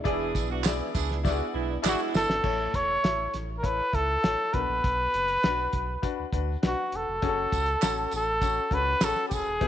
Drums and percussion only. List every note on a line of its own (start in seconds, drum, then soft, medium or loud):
0.05 kick loud
0.05 closed hi-hat medium
0.35 kick medium
0.35 closed hi-hat medium
0.35 tambourine soft
0.64 snare loud
0.64 clap medium
0.64 closed hi-hat medium
0.64 tambourine medium
0.95 kick medium
0.95 snare soft
0.95 closed hi-hat medium
0.95 tambourine medium
1.11 snare soft
1.25 kick medium
1.25 snare medium
1.25 tambourine soft
1.84 snare medium
1.84 clap loud
1.84 tambourine medium
2.14 snare medium
2.14 tambourine medium
2.30 snare medium
2.44 kick loud
2.44 crash medium
2.74 kick medium
2.74 closed hi-hat medium
3.04 snare medium
3.04 closed hi-hat medium
3.34 snare soft
3.34 closed hi-hat medium
3.64 kick medium
3.64 closed hi-hat medium
3.93 kick medium
3.93 closed hi-hat medium
4.24 snare loud
4.24 closed hi-hat medium
4.54 kick medium
4.54 closed hi-hat medium
4.84 kick loud
4.84 closed hi-hat medium
5.14 closed hi-hat medium
5.28 closed hi-hat soft
5.43 snare loud
5.43 closed hi-hat medium
5.73 kick medium
5.73 closed hi-hat medium
6.03 kick medium
6.03 closed hi-hat medium
6.33 kick medium
6.33 closed hi-hat medium
6.63 snare loud
6.63 closed hi-hat medium
6.92 closed hi-hat medium
7.22 kick loud
7.22 closed hi-hat medium
7.52 kick medium
7.52 closed hi-hat medium
7.52 tambourine soft
7.66 closed hi-hat soft
7.82 snare medium
7.82 clap medium
7.82 closed hi-hat medium
7.82 tambourine medium
8.11 closed hi-hat medium
8.11 tambourine medium
8.42 kick medium
8.42 closed hi-hat medium
8.42 tambourine soft
8.71 kick medium
8.71 closed hi-hat medium
9.01 snare loud
9.01 clap medium
9.01 closed hi-hat medium
9.01 tambourine medium
9.16 snare soft
9.31 kick medium
9.31 closed hi-hat medium
9.31 tambourine medium
9.61 kick loud
9.61 closed hi-hat medium